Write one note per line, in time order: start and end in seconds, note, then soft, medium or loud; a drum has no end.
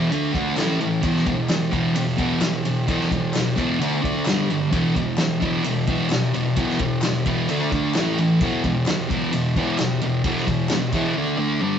0.00 0.10 E3 loud
0.11 0.32 D3 medium
0.11 0.33 A3 medium
0.11 0.34 D4 medium
0.11 ride medium
0.33 0.56 D3 loud
0.33 0.56 A3 loud
0.33 0.57 D4 medium
0.33 kick medium
0.33 ride medium
0.56 0.78 A2 medium
0.56 0.79 E3 medium
0.56 0.79 A3 loud
0.56 snare medium
0.56 clap medium
0.56 ride medium
0.80 1.01 A2 medium
0.80 1.01 E3 medium
0.80 ride medium
1.03 1.25 E2 medium
1.03 1.25 B2 medium
1.03 1.26 E3 medium
1.03 kick loud
1.03 ride medium
1.15 snare soft
1.26 1.47 E2 medium
1.26 1.47 B2 medium
1.26 kick medium
1.26 ride medium
1.49 1.70 E2 medium
1.49 1.71 B2 medium
1.49 snare loud
1.49 clap medium
1.49 ride medium
1.71 1.94 E2 medium
1.71 1.94 B2 loud
1.71 1.94 E3 loud
1.71 kick medium
1.71 ride medium
1.95 2.16 E2 medium
1.95 2.16 B2 medium
1.95 ride medium
2.17 2.40 E2 medium
2.17 2.40 B2 loud
2.17 2.40 E3 loud
2.17 kick medium
2.17 ride medium
2.41 2.62 E2 medium
2.41 2.63 B2 medium
2.41 snare loud
2.41 clap loud
2.41 ride medium
2.65 2.86 E2 medium
2.65 2.86 B2 medium
2.65 ride medium
2.87 3.09 E2 medium
2.87 3.09 B2 medium
2.87 3.10 E3 loud
2.87 kick loud
2.87 ride medium
3.00 snare soft
3.11 3.32 E2 medium
3.11 3.32 B2 medium
3.11 kick medium
3.11 ride medium
3.34 3.55 E2 medium
3.34 3.55 B2 medium
3.34 snare loud
3.34 clap medium
3.34 ride medium
3.56 3.78 E2 medium
3.56 3.79 B2 loud
3.56 3.80 E3 loud
3.56 kick medium
3.56 clap medium
3.56 ride medium
3.80 4.01 D3 medium
3.80 4.01 A3 medium
3.80 4.03 D4 medium
3.80 ride medium
4.02 4.24 D3 medium
4.02 4.25 A3 medium
4.02 4.25 D4 loud
4.02 kick medium
4.02 ride medium
4.26 4.48 G2 medium
4.26 4.48 D3 medium
4.26 4.49 G3 loud
4.26 snare loud
4.26 clap medium
4.26 ride medium
4.50 4.71 G2 medium
4.50 4.71 D3 medium
4.50 ride medium
4.71 4.94 E2 medium
4.71 4.94 B2 medium
4.71 4.94 E3 loud
4.71 kick loud
4.71 ride medium
4.95 5.16 E2 medium
4.95 5.16 B2 medium
4.95 kick medium
4.95 ride medium
5.18 5.39 E2 medium
5.18 5.39 B2 medium
5.18 snare loud
5.18 clap medium
5.18 ride medium
5.40 5.63 E2 medium
5.40 5.63 B2 medium
5.40 5.64 E3 loud
5.40 kick medium
5.40 ride medium
5.64 5.85 E2 medium
5.64 5.85 B2 medium
5.64 ride medium
5.87 6.08 E2 medium
5.87 6.09 B2 loud
5.87 6.10 E3 loud
5.87 kick medium
5.87 ride medium
6.09 6.31 E2 medium
6.09 6.31 B2 medium
6.09 snare loud
6.09 clap medium
6.09 ride medium
6.34 6.54 E2 medium
6.34 6.55 B2 medium
6.34 ride medium
6.56 6.78 E2 medium
6.56 6.78 B2 medium
6.56 6.79 E3 medium
6.56 kick loud
6.56 ride medium
6.69 snare soft
6.79 7.01 E2 medium
6.79 7.01 B2 medium
6.79 kick medium
6.79 ride medium
7.02 7.24 E2 medium
7.02 7.24 B2 medium
7.02 snare loud
7.02 clap medium
7.02 ride loud
7.26 7.47 E2 medium
7.26 7.48 B2 loud
7.26 7.48 E3 medium
7.26 kick medium
7.26 ride medium
7.49 7.71 D3 medium
7.49 7.71 A3 medium
7.49 7.71 D4 loud
7.49 ride medium
7.72 7.93 D3 medium
7.72 7.94 A3 loud
7.72 7.94 D4 loud
7.72 kick medium
7.72 ride medium
7.94 8.16 A2 medium
7.94 8.17 E3 loud
7.94 8.18 A3 loud
7.94 snare loud
7.94 clap medium
7.94 ride medium
8.18 8.39 A2 medium
8.18 8.39 E3 medium
8.18 ride medium
8.41 8.62 E2 medium
8.41 8.63 B2 medium
8.41 8.63 E3 medium
8.41 kick loud
8.41 ride medium
8.64 8.84 E2 medium
8.64 8.85 B2 medium
8.64 kick medium
8.64 ride medium
8.86 9.07 E2 medium
8.86 9.07 B2 medium
8.86 snare loud
8.86 clap medium
8.86 ride medium
9.09 9.31 E2 medium
9.09 9.31 B2 loud
9.09 9.32 E3 loud
9.09 kick medium
9.09 ride medium
9.32 9.53 E2 medium
9.32 9.53 B2 medium
9.32 ride medium
9.56 9.77 E2 medium
9.56 9.77 B2 loud
9.56 9.78 E3 loud
9.56 kick medium
9.56 ride medium
9.78 9.99 E2 medium
9.78 9.99 B2 medium
9.78 snare loud
9.78 clap medium
9.78 ride medium
10.01 10.22 E2 medium
10.01 10.22 B2 medium
10.01 ride medium
10.24 10.46 E2 medium
10.24 10.46 B2 medium
10.24 10.46 E3 loud
10.24 kick loud
10.24 ride medium
10.36 snare soft
10.47 10.67 E2 medium
10.47 10.68 B2 medium
10.47 kick medium
10.47 ride medium
10.69 10.91 E2 medium
10.69 10.91 B2 medium
10.69 snare loud
10.69 clap medium
10.69 ride medium
10.92 11.14 E2 medium
10.92 11.15 B2 medium
10.92 11.15 E3 medium
10.92 kick medium
10.92 clap medium
10.92 ride medium
11.16 11.36 D3 medium
11.16 11.37 A3 loud
11.16 11.38 D4 medium
11.37 11.59 D3 medium
11.37 11.60 A3 loud
11.37 11.60 D4 medium
11.61 11.79 G2 loud
11.61 11.79 D3 medium
11.61 11.79 G3 loud